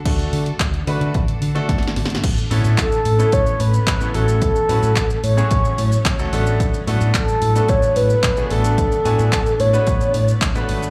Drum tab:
CC |x-----------------------------------------------|x-----------------------------------------------|------------------------------------------------|------------------------------------------------|
HH |x--x--o--x--x--x--o--x--x--x--o--x--x--x--o--x--|x-----o-----x-----o-----x-----o-----x-----o-----|x-----o-----x-----o-----x-----o-----x-----o-----|x-----o-----x-----o-----x-----o-----x-----o-----|
SH |------------------------------------------------|x--x--x--x--x--x--x--x--x--x--x--x--x--x--x--x--|x--x--x--x--x--x--x--x--x--x--x--x--x--x--x--x--|x--x--x--x--x--x--x--x--x--x--x--x--x--x--x--x--|
CP |------------x-----------------------------------|------------x-----------------------x-----------|------------x-----------------------x-----------|------------x-----------------------x-----------|
SD |------------------------------------o-o-o-o-o-o-|------------------------------------------------|------------------------------------------------|------------------------------------------------|
BD |o-----------o-----------o-----------o-----------|o-----------o-----------o-----------o-----------|o-----------o-----------o-----------o-----------|o-----------o-----------o-----------o-----------|

CC |------------------------------------------------|
HH |x-----o-----x-----o-----x-----o-----x-----o-----|
SH |x--x--x--x--x--x--x--x--x--x--x--x--x--x--x--x--|
CP |------------x-----------------------x-----------|
SD |------------------------------------------------|
BD |o-----------o-----------o-----------o-----------|